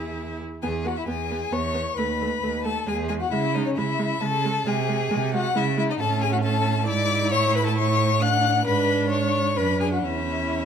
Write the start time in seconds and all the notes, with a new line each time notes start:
Already playing: E2 E4 G#4 E5
0.62 E2 B3 G#4 G#5
0.85 B3 F#4 F#5
0.97 E4 E5
1.07 E2 B3 G#4 G#5
1.31 B3
1.52 E2 B3 C#5 C#6
1.75 B3
1.97 D#2 A3 B4 B5
2.21 A3
2.43 D#2 A3
2.64 A3 A4 A5
2.87 E2 G#3 G#4 G#5
3.09 G#3 G#4 G#5
3.21 F#4 F#5
3.32 C#3 G#3 E4 E5
3.55 G#3 D#4 D#5
3.66 C#4 C#5
3.76 C#3 G#3 E4 E5
3.99 G#3
4.21 C#3 G#3 A4 A5
4.44 G#3
4.66 C3 G#3 G#4 G#5
4.88 G#3
5.11 C3 G#3
5.34 G#3 F#4 F#5
5.55 C#3 G#3 E4 E5
5.77 G#3 E4 E5
5.89 D#4 D#5
5.99 A2 C#4 A4 A5
6.21 G#4 G#5
6.32 F#4 F#5
6.42 A4 A5
6.86 G#2 E4 D5 D6
7.31 A2 C#5 C#6
7.55 B4 B5
7.65 A4 A5
7.77 C#5 C#6
8.22 D4 F#5 F#6
8.65 G#2 D4 B4 B5
9.10 C#5 C#6
9.57 F#2 D4 B4 B5
9.80 G#4 G#5
9.92 F#4 F#5
10.04 E2 C#4 E4 E5